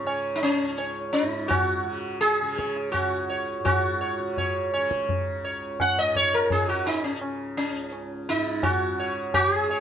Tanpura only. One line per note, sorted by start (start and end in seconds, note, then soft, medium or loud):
0.00 0.62 C#2 medium
0.00 1.22 G#2 medium
0.00 0.03 C#3 soft
0.00 1.83 C#3 medium
0.62 3.00 C#2 medium
1.22 3.60 G#2 medium
1.83 2.42 C#3 medium
2.42 4.19 C#3 medium
3.00 5.36 C#2 medium
3.60 5.95 G#2 medium
4.19 4.77 C#3 medium
4.77 6.54 C#3 medium
5.36 7.71 C#2 medium
5.96 8.29 G#2 medium
6.54 7.12 C#3 medium
7.12 8.88 C#3 medium
7.72 9.80 C#2 medium
8.30 9.80 G#2 medium
8.88 9.47 C#3 medium
9.47 9.80 C#3 medium